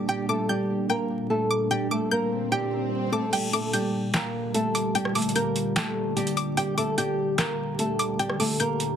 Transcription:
Already playing: A#2 G3 D4
0.09 G3 G4 G5
0.29 A3 A4 D6
0.49 G3 G4 G6
0.89 A#3 A#4 G5
1.30 A3 A4
1.51 D6
1.71 G3 G4 G5, swell
1.91 A3 A4 D6
2.11 A#3 A#4 G6
2.52 G3 G4 G5
3.12 A3 A4 D6
3.33 A#2 D3 G3 G4 G5, closed hi-hat, crash
3.53 A3 A4 D6, closed hi-hat
3.73 G3 G4 G6, closed hi-hat
4.14 A#3 A#4 G5, snare, clap, closed hi-hat
4.54 A3 A4, closed hi-hat
4.75 D6, closed hi-hat
4.95 G3 G4 G5, closed hi-hat
5.05 cross-stick
5.15 A3 A4 D6, closed hi-hat, open hi-hat
5.22 closed hi-hat
5.29 closed hi-hat
5.35 A#3 A#4 G6, closed hi-hat
5.56 closed hi-hat
5.76 A3 A4 G5, snare, clap, closed hi-hat
6.16 G3 G4, closed hi-hat
6.27 closed hi-hat
6.37 D6, closed hi-hat
6.57 A#2 D3 G3 G4 G5, closed hi-hat
6.78 A3 A4 D6, closed hi-hat
6.98 G3 G4 G6, closed hi-hat
7.38 A#3 A#4 G5, snare, clap, closed hi-hat
7.79 A3 A4, closed hi-hat
7.99 D6, closed hi-hat
8.19 G3 G4 G5, closed hi-hat
8.30 cross-stick
8.40 A3 A4 D6, open hi-hat
8.60 A#3 A#4 G6, closed hi-hat
8.80 closed hi-hat

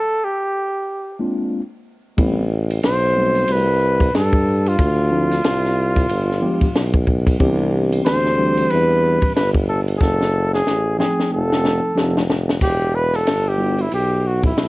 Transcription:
Already playing: A4
0.24 G4
1.19 G#3 A#3 C4 D4 F4
2.17 A1 G3 A3 B3 C4 E4, kick, ride
2.70 ride
2.83 B1 C5, snare, hi-hat pedal, ride
3.15 G3 A3 C4 F#4
3.35 ride
3.48 C2, ride
3.52 B4
4.00 kick, ride
4.14 G2 A4, snare, hi-hat pedal, ride
4.33 kick
4.66 F4, ride
4.79 D2, kick, ride
5.10 F3 A3 C4 D4 E4
5.31 snare, ride
5.44 C2, snare, hi-hat pedal, ride
5.65 snare
5.96 kick, ride
6.09 G1, ride
6.31 snare
6.41 F3 G#3 B3 D4 G4
6.61 kick, ride
6.75 B1, snare, hi-hat pedal, ride
6.94 kick
7.07 kick
7.27 kick, ride
7.39 C2 E3 B3 C4 D4 G4, kick, ride
7.92 ride
8.05 D2 C5, snare, hi-hat pedal, ride
8.26 snare
8.37 E3 G3 C4 D4 G4
8.57 ride
8.70 E2 B4, ride
9.22 G1, kick, ride
9.35 G1 B4, snare, hi-hat pedal, ride
9.54 kick
9.69 A4
9.88 ride
9.97 F#1 G#4 A4, kick
10.02 snare
10.21 snare
10.54 G#4, snare
10.66 A1, snare
10.98 F3 A3 C4 D#4 G#4 G5, snare
11.20 snare
11.31 F1 A4
11.52 snare
11.65 snare
11.83 F1
11.95 F1 F3 A3 C4 D#4 G4, snare
12.17 snare
12.30 snare
12.49 snare
12.61 E1 G4, kick, crash
12.95 B4
13.14 A4, snare, ride
13.26 G1, snare, hi-hat pedal, ride
13.48 G4
13.58 G3 B3 D4 E4 F#4
13.78 E4, ride
13.92 B1 G4, ride
14.27 F#4
14.43 E4, kick, ride
14.57 B1, snare, hi-hat pedal, ride

